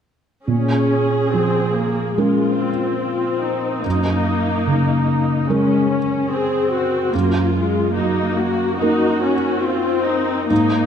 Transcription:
0.47 3.81 A#2 soft
0.47 1.29 C#4 soft
0.47 2.14 G#4 soft
1.33 2.69 F3 soft
1.33 1.75 C4 soft
1.75 2.18 A#3 soft
2.17 2.59 G#3 soft
2.17 3.81 G#3 soft
2.17 3.81 C#4 soft
2.17 3.00 F4 soft
2.17 3.81 A#4 soft
2.60 3.82 C4 soft
3.02 3.43 F4 soft
3.42 5.49 D#4 soft
3.84 7.10 F#2 soft
3.84 5.49 A#3 soft
4.67 5.98 C#3 soft
5.49 5.90 G#3 soft
5.49 7.09 G#3 soft
5.49 5.89 C#4 soft
5.49 7.10 C#4 soft
5.49 7.10 A#4 soft
5.90 6.31 C#4 soft
6.32 7.14 C4 soft
6.32 6.72 G#4 soft
6.73 7.13 F#4 soft
7.13 10.47 F#2 soft
7.13 7.55 A#3 soft
7.13 7.96 F4 soft
7.54 7.96 G#3 soft
7.95 9.32 F#3 soft
7.95 8.79 A#3 soft
7.95 8.37 D#4 soft
8.37 8.78 F#4 soft
8.79 10.47 A#3 soft
8.79 9.23 D#4 soft
8.79 10.47 D#4 soft
8.79 9.63 F#4 soft
8.79 10.47 A#4 soft
9.23 9.65 C#4 soft
9.64 10.50 C4 soft
9.64 10.07 F4 soft
10.07 10.49 D#4 soft
10.50 10.86 G#2 soft
10.50 10.86 A#3 soft
10.50 10.86 D#4 soft

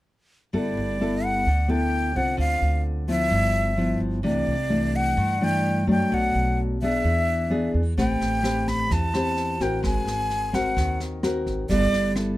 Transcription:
0.53 0.75 G1 medium
0.53 1.44 G3 soft
0.53 0.96 B3 soft
0.53 0.96 E4 medium
0.53 0.97 A4 medium
0.53 1.26 D5 medium
0.77 1.43 G1 medium
1.01 1.47 B3 soft
1.01 1.47 E4 medium
1.01 1.47 A4 medium
1.25 1.71 F#5 medium
1.46 2.12 D2 medium
1.46 2.36 D3 soft
1.68 2.12 B3 medium
1.68 2.12 E4 medium
1.68 2.12 A4 medium
1.68 2.18 G5 medium
2.15 2.37 C2 medium
2.15 3.05 C4 medium
2.15 3.05 F4 medium
2.15 3.06 A4 medium
2.15 2.39 F#5 medium
2.37 2.61 D2 medium
2.37 3.29 D3 soft
2.37 2.83 F5 medium
2.62 3.28 D2 medium
3.08 3.75 F3 soft
3.08 3.75 B3 medium
3.08 3.75 E4 medium
3.08 3.98 E5 loud
3.30 3.98 G1 medium
3.30 4.22 G2 soft
3.77 4.21 F3 medium
3.77 4.21 B3 medium
3.77 4.21 E4 medium
4.00 4.23 G1 medium
4.23 4.46 C2 medium
4.23 5.15 C3 medium
4.23 4.54 E3 soft
4.23 4.54 A3 soft
4.23 4.54 D4 medium
4.23 4.97 D5 medium
4.47 5.14 C2 medium
4.70 5.37 E3 medium
4.70 5.37 A3 soft
4.70 5.37 D4 medium
4.96 5.45 F#5 medium
5.17 6.08 G2 soft
5.17 5.84 G2 medium
5.41 5.84 E3 medium
5.41 5.84 A3 medium
5.41 5.85 D4 medium
5.41 5.89 G5 medium
5.87 6.09 F#2 medium
5.87 6.77 F#3 medium
5.87 6.77 A3 medium
5.87 6.78 D4 medium
5.87 6.15 G5 medium
6.12 6.33 B1 medium
6.12 7.02 B2 soft
6.12 6.59 F#5 medium
6.35 7.00 B1 medium
6.82 7.48 B3 medium
6.82 7.48 D4 medium
6.82 7.48 G#4 medium
6.82 7.70 E5 loud
7.04 7.70 E2 medium
7.04 7.95 E3 medium
7.50 7.80 B3 medium
7.50 7.81 D4 medium
7.50 7.81 G#4 medium
7.74 7.96 E2 medium
7.98 8.19 A1 medium
7.98 8.88 A3 soft
7.98 8.40 C4 medium
7.98 8.40 G4 soft
7.98 8.40 B4 medium
7.98 8.70 G5 medium
7.98 kick medium
7.98 snare soft
8.21 8.86 A1 medium
8.21 snare soft
8.43 9.09 C4 soft
8.43 9.10 G4 soft
8.43 9.10 B4 medium
8.43 cross-stick medium
8.43 snare soft
8.67 8.94 B5 medium
8.67 kick soft
8.67 snare soft
8.91 9.56 E2 medium
8.91 9.81 E3 soft
8.91 9.63 A5 medium
8.91 kick medium
8.91 snare soft
9.14 9.57 C4 medium
9.14 9.57 G4 medium
9.14 9.57 B4 medium
9.14 cross-stick medium
9.14 snare soft
9.37 snare soft
9.60 9.82 A1 medium
9.60 10.50 C4 medium
9.60 10.50 F#4 medium
9.60 10.50 A#4 medium
9.60 9.84 G5 medium
9.60 kick soft
9.60 snare soft
9.83 10.05 G#1 medium
9.83 10.74 G#3 soft
9.83 10.56 G#5 medium
9.83 kick soft
9.83 cross-stick soft
9.83 snare soft
10.05 10.72 G#1 medium
10.05 snare soft
10.30 snare soft
10.53 11.19 C4 medium
10.53 11.19 F#4 medium
10.53 11.19 A#4 medium
10.53 11.00 F#5 medium
10.53 kick soft
10.53 cross-stick medium
10.53 snare soft
10.77 11.42 D#2 medium
10.77 11.67 D#3 soft
10.77 kick medium
10.77 snare soft
11.00 snare soft
11.23 11.66 C4 medium
11.23 11.66 F#4 medium
11.23 11.66 A#4 medium
11.23 cross-stick medium
11.23 snare soft
11.46 11.68 G#1 medium
11.46 kick soft
11.46 snare soft
11.70 11.91 G1 medium
11.70 12.38 G3 soft
11.70 12.12 B3 soft
11.70 12.13 E4 soft
11.70 12.13 A4 medium
11.70 12.13 D5 loud
11.70 kick medium
11.70 snare soft
11.93 snare soft
12.15 12.38 B3 soft
12.15 12.38 E4 medium
12.15 12.38 A4 medium
12.15 cross-stick medium
12.15 snare soft

